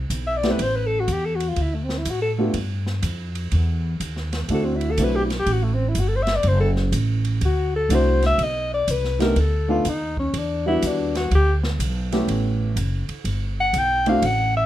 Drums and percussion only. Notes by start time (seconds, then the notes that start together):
0.10 hi-hat pedal, ride
0.43 snare, ride
0.59 ride
1.08 hi-hat pedal, ride
1.40 ride
1.56 ride
1.89 snare
2.05 hi-hat pedal, ride
2.54 ride
2.87 snare
3.03 hi-hat pedal, ride
3.35 ride
3.51 ride
4.00 hi-hat pedal, ride
4.17 snare
4.33 snare, ride
4.49 ride
4.81 ride
4.98 hi-hat pedal, ride
5.30 snare, ride
5.46 ride
5.95 hi-hat pedal, ride
6.27 snare, ride
6.43 ride
6.76 snare
6.92 hi-hat pedal, ride
7.25 ride
7.41 ride
7.90 hi-hat pedal, ride
8.22 snare, ride
8.39 ride
8.88 hi-hat pedal, ride
9.04 snare
9.20 snare, ride
9.36 ride
9.85 hi-hat pedal, ride
10.17 kick
10.34 ride
10.82 hi-hat pedal, ride
11.15 snare, ride
11.31 ride
11.63 snare
11.80 hi-hat pedal, ride
12.12 snare, ride
12.28 ride
12.77 hi-hat pedal, ride
13.09 ride
13.25 ride
13.74 hi-hat pedal, ride
14.06 ride
14.22 ride